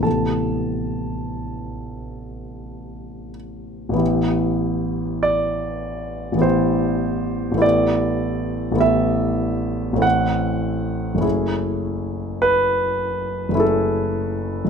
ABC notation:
X:1
M:3/4
L:1/8
Q:1/4=50
K:Am
V:1 name="Grand piano"
[Aa]4- [Aa] z | z2 d2 c2 | d2 e2 ^f2 | z2 B2 A2 |]
V:2 name="Grand piano"
[A,,,C,B,EG]6 | [A,,,E,B,EG]4 [A,,,E,B,EG]2 | [A,,,A,B,EG]2 [A,,,A,B,EG]2 [A,,,A,CEA]2 | [^F,,,A,^CE^G]4 [F,,,A,CEG]2 |]